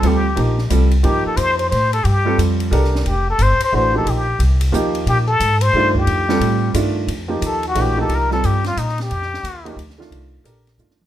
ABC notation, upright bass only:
X:1
M:3/4
L:1/8
Q:"Swing" 1/4=178
K:Fmix
V:1 name="Upright bass" clef=bass
D,,2 B,,,2 C,,2 | G,, z F,,2 A,,2 | G,,2 F,,2 C,,2 | F,,,2 G,,, z A,,,2 |
B,,,2 C,,2 E,,2 | B,,2 _A,,2 G,,2 | F,,2 A,,2 G,,2 | F,,2 E,,2 B,,,2 |
C,,2 G,,2 B,,2 | F,,2 E,,2 D,,2 | C,,2 B,,,2 G,,,2 |]